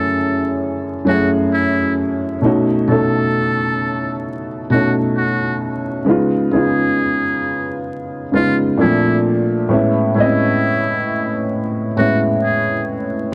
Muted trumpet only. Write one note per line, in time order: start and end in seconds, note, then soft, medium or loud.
0.00 0.58 A4 medium
1.08 1.31 F#4 medium
1.53 1.94 E4 medium
2.89 4.21 A4 medium
4.71 4.94 F#4 medium
5.17 5.58 F#4 medium
6.53 7.85 G#4 medium
8.35 8.58 F4 medium
8.81 9.21 E4 medium
10.17 11.48 E4 medium
11.98 12.21 F#4 medium
12.44 12.85 G#4 medium